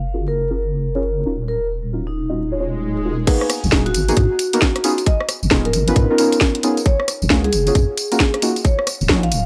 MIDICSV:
0, 0, Header, 1, 6, 480
1, 0, Start_track
1, 0, Tempo, 447761
1, 1589, Time_signature, 4, 2, 24, 8
1, 10137, End_track
2, 0, Start_track
2, 0, Title_t, "Vibraphone"
2, 0, Program_c, 0, 11
2, 299, Note_on_c, 0, 70, 85
2, 1517, Note_off_c, 0, 70, 0
2, 1590, Note_on_c, 0, 70, 94
2, 1772, Note_off_c, 0, 70, 0
2, 2218, Note_on_c, 0, 63, 81
2, 3437, Note_off_c, 0, 63, 0
2, 3508, Note_on_c, 0, 71, 101
2, 3691, Note_off_c, 0, 71, 0
2, 4138, Note_on_c, 0, 66, 90
2, 5357, Note_off_c, 0, 66, 0
2, 5429, Note_on_c, 0, 75, 98
2, 5611, Note_off_c, 0, 75, 0
2, 6061, Note_on_c, 0, 70, 92
2, 7278, Note_off_c, 0, 70, 0
2, 7350, Note_on_c, 0, 73, 102
2, 7532, Note_off_c, 0, 73, 0
2, 7981, Note_on_c, 0, 68, 94
2, 9198, Note_off_c, 0, 68, 0
2, 9267, Note_on_c, 0, 73, 101
2, 9450, Note_off_c, 0, 73, 0
2, 9902, Note_on_c, 0, 77, 95
2, 10137, Note_off_c, 0, 77, 0
2, 10137, End_track
3, 0, Start_track
3, 0, Title_t, "Synth stab"
3, 0, Program_c, 1, 62
3, 150, Note_on_c, 1, 61, 85
3, 150, Note_on_c, 1, 65, 82
3, 150, Note_on_c, 1, 66, 81
3, 150, Note_on_c, 1, 68, 78
3, 150, Note_on_c, 1, 70, 96
3, 302, Note_off_c, 1, 65, 0
3, 303, Note_off_c, 1, 61, 0
3, 303, Note_off_c, 1, 66, 0
3, 303, Note_off_c, 1, 68, 0
3, 303, Note_off_c, 1, 70, 0
3, 539, Note_on_c, 1, 66, 89
3, 539, Note_on_c, 1, 68, 87
3, 539, Note_on_c, 1, 70, 105
3, 540, Note_on_c, 1, 61, 95
3, 540, Note_on_c, 1, 65, 86
3, 596, Note_off_c, 1, 66, 0
3, 597, Note_off_c, 1, 61, 0
3, 597, Note_off_c, 1, 65, 0
3, 597, Note_off_c, 1, 68, 0
3, 597, Note_off_c, 1, 70, 0
3, 1017, Note_on_c, 1, 66, 87
3, 1018, Note_on_c, 1, 61, 97
3, 1018, Note_on_c, 1, 65, 88
3, 1018, Note_on_c, 1, 68, 88
3, 1018, Note_on_c, 1, 73, 105
3, 1112, Note_off_c, 1, 61, 0
3, 1112, Note_off_c, 1, 65, 0
3, 1112, Note_off_c, 1, 66, 0
3, 1112, Note_off_c, 1, 68, 0
3, 1112, Note_off_c, 1, 73, 0
3, 1348, Note_on_c, 1, 61, 82
3, 1348, Note_on_c, 1, 63, 79
3, 1348, Note_on_c, 1, 65, 76
3, 1348, Note_on_c, 1, 66, 75
3, 1348, Note_on_c, 1, 70, 92
3, 1445, Note_off_c, 1, 61, 0
3, 1445, Note_off_c, 1, 63, 0
3, 1445, Note_off_c, 1, 65, 0
3, 1445, Note_off_c, 1, 66, 0
3, 1445, Note_off_c, 1, 70, 0
3, 2069, Note_on_c, 1, 61, 79
3, 2069, Note_on_c, 1, 65, 69
3, 2069, Note_on_c, 1, 70, 89
3, 2070, Note_on_c, 1, 63, 71
3, 2070, Note_on_c, 1, 66, 72
3, 2222, Note_off_c, 1, 61, 0
3, 2222, Note_off_c, 1, 63, 0
3, 2222, Note_off_c, 1, 65, 0
3, 2222, Note_off_c, 1, 70, 0
3, 2223, Note_off_c, 1, 66, 0
3, 2460, Note_on_c, 1, 61, 95
3, 2460, Note_on_c, 1, 63, 88
3, 2460, Note_on_c, 1, 65, 87
3, 2460, Note_on_c, 1, 66, 87
3, 2460, Note_on_c, 1, 75, 103
3, 2663, Note_off_c, 1, 65, 0
3, 2664, Note_off_c, 1, 61, 0
3, 2664, Note_off_c, 1, 63, 0
3, 2664, Note_off_c, 1, 66, 0
3, 2664, Note_off_c, 1, 75, 0
3, 2700, Note_on_c, 1, 61, 82
3, 2700, Note_on_c, 1, 63, 74
3, 2700, Note_on_c, 1, 65, 74
3, 2700, Note_on_c, 1, 66, 75
3, 2700, Note_on_c, 1, 73, 91
3, 2757, Note_off_c, 1, 61, 0
3, 2757, Note_off_c, 1, 63, 0
3, 2757, Note_off_c, 1, 65, 0
3, 2757, Note_off_c, 1, 66, 0
3, 2757, Note_off_c, 1, 73, 0
3, 2789, Note_on_c, 1, 61, 94
3, 2789, Note_on_c, 1, 63, 87
3, 2789, Note_on_c, 1, 65, 87
3, 2789, Note_on_c, 1, 66, 82
3, 2789, Note_on_c, 1, 73, 102
3, 3247, Note_off_c, 1, 61, 0
3, 3247, Note_off_c, 1, 65, 0
3, 3247, Note_off_c, 1, 73, 0
3, 3248, Note_off_c, 1, 63, 0
3, 3248, Note_off_c, 1, 66, 0
3, 3269, Note_on_c, 1, 61, 84
3, 3269, Note_on_c, 1, 63, 81
3, 3269, Note_on_c, 1, 65, 80
3, 3269, Note_on_c, 1, 66, 82
3, 3270, Note_on_c, 1, 70, 94
3, 3422, Note_off_c, 1, 61, 0
3, 3422, Note_off_c, 1, 63, 0
3, 3422, Note_off_c, 1, 65, 0
3, 3422, Note_off_c, 1, 66, 0
3, 3423, Note_off_c, 1, 70, 0
3, 3508, Note_on_c, 1, 58, 103
3, 3508, Note_on_c, 1, 59, 96
3, 3508, Note_on_c, 1, 63, 99
3, 3508, Note_on_c, 1, 68, 116
3, 3509, Note_on_c, 1, 66, 94
3, 3953, Note_off_c, 1, 58, 0
3, 3953, Note_off_c, 1, 59, 0
3, 3953, Note_off_c, 1, 63, 0
3, 3953, Note_off_c, 1, 66, 0
3, 3953, Note_off_c, 1, 68, 0
3, 3988, Note_on_c, 1, 58, 91
3, 3988, Note_on_c, 1, 59, 84
3, 3988, Note_on_c, 1, 66, 83
3, 3989, Note_on_c, 1, 63, 82
3, 3989, Note_on_c, 1, 68, 99
3, 4141, Note_off_c, 1, 58, 0
3, 4141, Note_off_c, 1, 66, 0
3, 4142, Note_off_c, 1, 59, 0
3, 4142, Note_off_c, 1, 63, 0
3, 4142, Note_off_c, 1, 68, 0
3, 4380, Note_on_c, 1, 58, 102
3, 4380, Note_on_c, 1, 59, 97
3, 4380, Note_on_c, 1, 63, 94
3, 4381, Note_on_c, 1, 66, 94
3, 4381, Note_on_c, 1, 68, 115
3, 4437, Note_off_c, 1, 58, 0
3, 4437, Note_off_c, 1, 59, 0
3, 4437, Note_off_c, 1, 63, 0
3, 4437, Note_off_c, 1, 66, 0
3, 4438, Note_off_c, 1, 68, 0
3, 4860, Note_on_c, 1, 58, 103
3, 4860, Note_on_c, 1, 59, 93
3, 4861, Note_on_c, 1, 63, 92
3, 4861, Note_on_c, 1, 66, 91
3, 4861, Note_on_c, 1, 70, 111
3, 4953, Note_off_c, 1, 58, 0
3, 4953, Note_off_c, 1, 59, 0
3, 4953, Note_off_c, 1, 63, 0
3, 4953, Note_off_c, 1, 66, 0
3, 4953, Note_off_c, 1, 70, 0
3, 5188, Note_on_c, 1, 61, 82
3, 5189, Note_on_c, 1, 59, 90
3, 5189, Note_on_c, 1, 63, 84
3, 5189, Note_on_c, 1, 68, 93
3, 5190, Note_on_c, 1, 65, 81
3, 5285, Note_off_c, 1, 61, 0
3, 5286, Note_off_c, 1, 59, 0
3, 5286, Note_off_c, 1, 63, 0
3, 5286, Note_off_c, 1, 65, 0
3, 5286, Note_off_c, 1, 68, 0
3, 5910, Note_on_c, 1, 63, 77
3, 5911, Note_on_c, 1, 59, 80
3, 5911, Note_on_c, 1, 61, 74
3, 5911, Note_on_c, 1, 65, 74
3, 5911, Note_on_c, 1, 68, 91
3, 6063, Note_off_c, 1, 59, 0
3, 6063, Note_off_c, 1, 61, 0
3, 6063, Note_off_c, 1, 63, 0
3, 6063, Note_off_c, 1, 65, 0
3, 6063, Note_off_c, 1, 68, 0
3, 6302, Note_on_c, 1, 59, 102
3, 6302, Note_on_c, 1, 61, 94
3, 6303, Note_on_c, 1, 63, 90
3, 6303, Note_on_c, 1, 65, 90
3, 6303, Note_on_c, 1, 71, 109
3, 6505, Note_off_c, 1, 59, 0
3, 6505, Note_off_c, 1, 61, 0
3, 6505, Note_off_c, 1, 63, 0
3, 6505, Note_off_c, 1, 65, 0
3, 6505, Note_off_c, 1, 71, 0
3, 6543, Note_on_c, 1, 59, 86
3, 6543, Note_on_c, 1, 61, 80
3, 6543, Note_on_c, 1, 63, 81
3, 6543, Note_on_c, 1, 65, 81
3, 6543, Note_on_c, 1, 70, 96
3, 6598, Note_off_c, 1, 59, 0
3, 6598, Note_off_c, 1, 63, 0
3, 6598, Note_off_c, 1, 70, 0
3, 6599, Note_off_c, 1, 61, 0
3, 6599, Note_off_c, 1, 65, 0
3, 6631, Note_on_c, 1, 63, 91
3, 6631, Note_on_c, 1, 65, 87
3, 6632, Note_on_c, 1, 59, 101
3, 6632, Note_on_c, 1, 61, 93
3, 6632, Note_on_c, 1, 70, 108
3, 7089, Note_off_c, 1, 59, 0
3, 7089, Note_off_c, 1, 61, 0
3, 7089, Note_off_c, 1, 63, 0
3, 7089, Note_off_c, 1, 65, 0
3, 7089, Note_off_c, 1, 70, 0
3, 7111, Note_on_c, 1, 59, 91
3, 7111, Note_on_c, 1, 68, 102
3, 7112, Note_on_c, 1, 61, 81
3, 7112, Note_on_c, 1, 63, 84
3, 7112, Note_on_c, 1, 65, 85
3, 7263, Note_off_c, 1, 59, 0
3, 7263, Note_off_c, 1, 63, 0
3, 7263, Note_off_c, 1, 68, 0
3, 7264, Note_off_c, 1, 61, 0
3, 7264, Note_off_c, 1, 65, 0
3, 7833, Note_on_c, 1, 65, 86
3, 7834, Note_on_c, 1, 58, 94
3, 7834, Note_on_c, 1, 61, 81
3, 7834, Note_on_c, 1, 66, 85
3, 7834, Note_on_c, 1, 68, 98
3, 7984, Note_off_c, 1, 58, 0
3, 7984, Note_off_c, 1, 61, 0
3, 7984, Note_off_c, 1, 65, 0
3, 7984, Note_off_c, 1, 66, 0
3, 7984, Note_off_c, 1, 68, 0
3, 8223, Note_on_c, 1, 58, 101
3, 8224, Note_on_c, 1, 61, 93
3, 8224, Note_on_c, 1, 65, 93
3, 8224, Note_on_c, 1, 66, 92
3, 8224, Note_on_c, 1, 68, 114
3, 8279, Note_off_c, 1, 58, 0
3, 8279, Note_off_c, 1, 61, 0
3, 8279, Note_off_c, 1, 65, 0
3, 8279, Note_off_c, 1, 66, 0
3, 8279, Note_off_c, 1, 68, 0
3, 8700, Note_on_c, 1, 58, 100
3, 8700, Note_on_c, 1, 61, 91
3, 8700, Note_on_c, 1, 65, 90
3, 8700, Note_on_c, 1, 66, 96
3, 8700, Note_on_c, 1, 70, 109
3, 8793, Note_off_c, 1, 58, 0
3, 8793, Note_off_c, 1, 61, 0
3, 8793, Note_off_c, 1, 65, 0
3, 8793, Note_off_c, 1, 66, 0
3, 8793, Note_off_c, 1, 70, 0
3, 9029, Note_on_c, 1, 58, 91
3, 9029, Note_on_c, 1, 65, 78
3, 9029, Note_on_c, 1, 66, 100
3, 9030, Note_on_c, 1, 61, 82
3, 9030, Note_on_c, 1, 63, 80
3, 9125, Note_off_c, 1, 65, 0
3, 9126, Note_off_c, 1, 58, 0
3, 9126, Note_off_c, 1, 61, 0
3, 9126, Note_off_c, 1, 63, 0
3, 9126, Note_off_c, 1, 66, 0
3, 9749, Note_on_c, 1, 58, 81
3, 9749, Note_on_c, 1, 61, 75
3, 9749, Note_on_c, 1, 63, 75
3, 9749, Note_on_c, 1, 65, 75
3, 9750, Note_on_c, 1, 66, 90
3, 9902, Note_off_c, 1, 58, 0
3, 9902, Note_off_c, 1, 61, 0
3, 9902, Note_off_c, 1, 63, 0
3, 9902, Note_off_c, 1, 65, 0
3, 9902, Note_off_c, 1, 66, 0
3, 10137, End_track
4, 0, Start_track
4, 0, Title_t, "Wobble bass"
4, 0, Program_c, 2, 39
4, 0, Note_on_c, 2, 30, 82
4, 1331, Note_off_c, 2, 30, 0
4, 1346, Note_on_c, 2, 27, 82
4, 3490, Note_off_c, 2, 27, 0
4, 3899, Note_on_c, 2, 32, 96
4, 3964, Note_off_c, 2, 32, 0
4, 3990, Note_on_c, 2, 27, 99
4, 4227, Note_on_c, 2, 32, 85
4, 4243, Note_off_c, 2, 27, 0
4, 4418, Note_off_c, 2, 32, 0
4, 4469, Note_on_c, 2, 44, 93
4, 4578, Note_off_c, 2, 44, 0
4, 5818, Note_on_c, 2, 32, 95
4, 5883, Note_off_c, 2, 32, 0
4, 5910, Note_on_c, 2, 27, 98
4, 6149, Note_on_c, 2, 32, 86
4, 6165, Note_off_c, 2, 27, 0
4, 6340, Note_off_c, 2, 32, 0
4, 6389, Note_on_c, 2, 44, 93
4, 6498, Note_off_c, 2, 44, 0
4, 7739, Note_on_c, 2, 30, 102
4, 7804, Note_off_c, 2, 30, 0
4, 7831, Note_on_c, 2, 37, 100
4, 8069, Note_on_c, 2, 30, 86
4, 8085, Note_off_c, 2, 37, 0
4, 8259, Note_off_c, 2, 30, 0
4, 8311, Note_on_c, 2, 42, 95
4, 8419, Note_off_c, 2, 42, 0
4, 9659, Note_on_c, 2, 27, 103
4, 9724, Note_off_c, 2, 27, 0
4, 9749, Note_on_c, 2, 34, 99
4, 9989, Note_on_c, 2, 27, 85
4, 10005, Note_off_c, 2, 34, 0
4, 10137, Note_off_c, 2, 27, 0
4, 10137, End_track
5, 0, Start_track
5, 0, Title_t, "Swell"
5, 0, Program_c, 3, 103
5, 2547, Note_on_c, 3, 60, 69
5, 3508, Note_off_c, 3, 60, 0
5, 10137, End_track
6, 0, Start_track
6, 0, Title_t, "Drums"
6, 3508, Note_on_c, 9, 42, 67
6, 3508, Note_on_c, 9, 49, 108
6, 3508, Note_on_c, 9, 54, 30
6, 3509, Note_on_c, 9, 36, 124
6, 3615, Note_off_c, 9, 42, 0
6, 3615, Note_off_c, 9, 49, 0
6, 3615, Note_off_c, 9, 54, 0
6, 3617, Note_off_c, 9, 36, 0
6, 3658, Note_on_c, 9, 37, 69
6, 3747, Note_off_c, 9, 37, 0
6, 3747, Note_on_c, 9, 37, 70
6, 3747, Note_on_c, 9, 42, 113
6, 3747, Note_on_c, 9, 54, 71
6, 3855, Note_off_c, 9, 37, 0
6, 3855, Note_off_c, 9, 42, 0
6, 3855, Note_off_c, 9, 54, 0
6, 3900, Note_on_c, 9, 54, 42
6, 3988, Note_off_c, 9, 54, 0
6, 3988, Note_on_c, 9, 38, 121
6, 3988, Note_on_c, 9, 54, 31
6, 3990, Note_on_c, 9, 36, 119
6, 4096, Note_off_c, 9, 38, 0
6, 4096, Note_off_c, 9, 54, 0
6, 4097, Note_off_c, 9, 36, 0
6, 4139, Note_on_c, 9, 42, 37
6, 4229, Note_off_c, 9, 42, 0
6, 4229, Note_on_c, 9, 42, 111
6, 4229, Note_on_c, 9, 54, 71
6, 4336, Note_off_c, 9, 42, 0
6, 4336, Note_off_c, 9, 54, 0
6, 4379, Note_on_c, 9, 42, 65
6, 4379, Note_on_c, 9, 54, 41
6, 4467, Note_off_c, 9, 42, 0
6, 4467, Note_off_c, 9, 54, 0
6, 4467, Note_on_c, 9, 42, 64
6, 4467, Note_on_c, 9, 54, 29
6, 4470, Note_on_c, 9, 36, 119
6, 4574, Note_off_c, 9, 42, 0
6, 4574, Note_off_c, 9, 54, 0
6, 4577, Note_off_c, 9, 36, 0
6, 4707, Note_on_c, 9, 42, 114
6, 4707, Note_on_c, 9, 54, 73
6, 4814, Note_off_c, 9, 42, 0
6, 4814, Note_off_c, 9, 54, 0
6, 4859, Note_on_c, 9, 42, 69
6, 4859, Note_on_c, 9, 54, 40
6, 4949, Note_off_c, 9, 54, 0
6, 4949, Note_on_c, 9, 38, 115
6, 4949, Note_on_c, 9, 54, 29
6, 4950, Note_on_c, 9, 36, 122
6, 4967, Note_off_c, 9, 42, 0
6, 5056, Note_off_c, 9, 38, 0
6, 5056, Note_off_c, 9, 54, 0
6, 5057, Note_off_c, 9, 36, 0
6, 5099, Note_on_c, 9, 37, 68
6, 5099, Note_on_c, 9, 42, 53
6, 5187, Note_off_c, 9, 42, 0
6, 5187, Note_on_c, 9, 42, 114
6, 5187, Note_on_c, 9, 54, 72
6, 5206, Note_off_c, 9, 37, 0
6, 5295, Note_off_c, 9, 42, 0
6, 5295, Note_off_c, 9, 54, 0
6, 5339, Note_on_c, 9, 42, 38
6, 5339, Note_on_c, 9, 54, 40
6, 5428, Note_off_c, 9, 42, 0
6, 5428, Note_off_c, 9, 54, 0
6, 5428, Note_on_c, 9, 42, 67
6, 5428, Note_on_c, 9, 54, 31
6, 5430, Note_on_c, 9, 36, 123
6, 5536, Note_off_c, 9, 42, 0
6, 5536, Note_off_c, 9, 54, 0
6, 5538, Note_off_c, 9, 36, 0
6, 5579, Note_on_c, 9, 37, 71
6, 5666, Note_off_c, 9, 37, 0
6, 5666, Note_on_c, 9, 37, 71
6, 5666, Note_on_c, 9, 42, 109
6, 5666, Note_on_c, 9, 54, 71
6, 5773, Note_off_c, 9, 37, 0
6, 5773, Note_off_c, 9, 42, 0
6, 5773, Note_off_c, 9, 54, 0
6, 5818, Note_on_c, 9, 54, 42
6, 5906, Note_off_c, 9, 54, 0
6, 5906, Note_on_c, 9, 38, 125
6, 5906, Note_on_c, 9, 54, 31
6, 5910, Note_on_c, 9, 36, 118
6, 6013, Note_off_c, 9, 38, 0
6, 6013, Note_off_c, 9, 54, 0
6, 6018, Note_off_c, 9, 36, 0
6, 6058, Note_on_c, 9, 42, 37
6, 6147, Note_off_c, 9, 42, 0
6, 6147, Note_on_c, 9, 42, 108
6, 6147, Note_on_c, 9, 54, 68
6, 6254, Note_off_c, 9, 42, 0
6, 6254, Note_off_c, 9, 54, 0
6, 6299, Note_on_c, 9, 42, 65
6, 6299, Note_on_c, 9, 54, 41
6, 6388, Note_off_c, 9, 42, 0
6, 6388, Note_off_c, 9, 54, 0
6, 6388, Note_on_c, 9, 42, 64
6, 6388, Note_on_c, 9, 54, 31
6, 6391, Note_on_c, 9, 36, 120
6, 6496, Note_off_c, 9, 42, 0
6, 6496, Note_off_c, 9, 54, 0
6, 6498, Note_off_c, 9, 36, 0
6, 6629, Note_on_c, 9, 42, 112
6, 6629, Note_on_c, 9, 54, 73
6, 6736, Note_off_c, 9, 42, 0
6, 6736, Note_off_c, 9, 54, 0
6, 6780, Note_on_c, 9, 42, 65
6, 6780, Note_on_c, 9, 54, 40
6, 6870, Note_off_c, 9, 54, 0
6, 6870, Note_on_c, 9, 38, 122
6, 6870, Note_on_c, 9, 54, 30
6, 6871, Note_on_c, 9, 36, 121
6, 6887, Note_off_c, 9, 42, 0
6, 6977, Note_off_c, 9, 38, 0
6, 6977, Note_off_c, 9, 54, 0
6, 6978, Note_off_c, 9, 36, 0
6, 7020, Note_on_c, 9, 42, 51
6, 7110, Note_off_c, 9, 42, 0
6, 7110, Note_on_c, 9, 42, 105
6, 7110, Note_on_c, 9, 54, 70
6, 7217, Note_off_c, 9, 42, 0
6, 7217, Note_off_c, 9, 54, 0
6, 7261, Note_on_c, 9, 42, 36
6, 7261, Note_on_c, 9, 54, 41
6, 7350, Note_off_c, 9, 42, 0
6, 7350, Note_off_c, 9, 54, 0
6, 7350, Note_on_c, 9, 42, 64
6, 7350, Note_on_c, 9, 54, 32
6, 7351, Note_on_c, 9, 36, 126
6, 7457, Note_off_c, 9, 42, 0
6, 7457, Note_off_c, 9, 54, 0
6, 7458, Note_off_c, 9, 36, 0
6, 7499, Note_on_c, 9, 37, 70
6, 7589, Note_off_c, 9, 37, 0
6, 7589, Note_on_c, 9, 37, 67
6, 7589, Note_on_c, 9, 42, 106
6, 7589, Note_on_c, 9, 54, 74
6, 7696, Note_off_c, 9, 37, 0
6, 7696, Note_off_c, 9, 42, 0
6, 7696, Note_off_c, 9, 54, 0
6, 7739, Note_on_c, 9, 54, 42
6, 7827, Note_off_c, 9, 54, 0
6, 7827, Note_on_c, 9, 38, 127
6, 7827, Note_on_c, 9, 54, 32
6, 7831, Note_on_c, 9, 36, 121
6, 7935, Note_off_c, 9, 38, 0
6, 7935, Note_off_c, 9, 54, 0
6, 7938, Note_off_c, 9, 36, 0
6, 7980, Note_on_c, 9, 42, 36
6, 8068, Note_off_c, 9, 42, 0
6, 8068, Note_on_c, 9, 42, 103
6, 8068, Note_on_c, 9, 54, 75
6, 8175, Note_off_c, 9, 42, 0
6, 8175, Note_off_c, 9, 54, 0
6, 8219, Note_on_c, 9, 42, 63
6, 8219, Note_on_c, 9, 54, 42
6, 8309, Note_off_c, 9, 42, 0
6, 8309, Note_off_c, 9, 54, 0
6, 8309, Note_on_c, 9, 42, 63
6, 8309, Note_on_c, 9, 54, 30
6, 8311, Note_on_c, 9, 36, 123
6, 8416, Note_off_c, 9, 42, 0
6, 8416, Note_off_c, 9, 54, 0
6, 8418, Note_off_c, 9, 36, 0
6, 8549, Note_on_c, 9, 42, 103
6, 8549, Note_on_c, 9, 54, 75
6, 8656, Note_off_c, 9, 42, 0
6, 8656, Note_off_c, 9, 54, 0
6, 8701, Note_on_c, 9, 42, 66
6, 8701, Note_on_c, 9, 54, 42
6, 8789, Note_off_c, 9, 54, 0
6, 8789, Note_on_c, 9, 38, 124
6, 8789, Note_on_c, 9, 54, 31
6, 8790, Note_on_c, 9, 36, 127
6, 8808, Note_off_c, 9, 42, 0
6, 8897, Note_off_c, 9, 36, 0
6, 8897, Note_off_c, 9, 38, 0
6, 8897, Note_off_c, 9, 54, 0
6, 8940, Note_on_c, 9, 37, 70
6, 8940, Note_on_c, 9, 42, 50
6, 9029, Note_off_c, 9, 42, 0
6, 9029, Note_on_c, 9, 42, 105
6, 9029, Note_on_c, 9, 54, 72
6, 9047, Note_off_c, 9, 37, 0
6, 9136, Note_off_c, 9, 42, 0
6, 9136, Note_off_c, 9, 54, 0
6, 9179, Note_on_c, 9, 42, 36
6, 9179, Note_on_c, 9, 54, 42
6, 9268, Note_off_c, 9, 42, 0
6, 9268, Note_off_c, 9, 54, 0
6, 9268, Note_on_c, 9, 42, 65
6, 9268, Note_on_c, 9, 54, 34
6, 9270, Note_on_c, 9, 36, 121
6, 9375, Note_off_c, 9, 42, 0
6, 9375, Note_off_c, 9, 54, 0
6, 9377, Note_off_c, 9, 36, 0
6, 9419, Note_on_c, 9, 37, 67
6, 9507, Note_off_c, 9, 37, 0
6, 9507, Note_on_c, 9, 37, 68
6, 9507, Note_on_c, 9, 42, 99
6, 9507, Note_on_c, 9, 54, 78
6, 9615, Note_off_c, 9, 37, 0
6, 9615, Note_off_c, 9, 42, 0
6, 9615, Note_off_c, 9, 54, 0
6, 9659, Note_on_c, 9, 54, 44
6, 9748, Note_on_c, 9, 38, 127
6, 9750, Note_on_c, 9, 36, 116
6, 9767, Note_off_c, 9, 54, 0
6, 9855, Note_off_c, 9, 38, 0
6, 9857, Note_off_c, 9, 36, 0
6, 9898, Note_on_c, 9, 42, 37
6, 9987, Note_off_c, 9, 42, 0
6, 9987, Note_on_c, 9, 42, 103
6, 9987, Note_on_c, 9, 54, 75
6, 10094, Note_off_c, 9, 42, 0
6, 10094, Note_off_c, 9, 54, 0
6, 10137, End_track
0, 0, End_of_file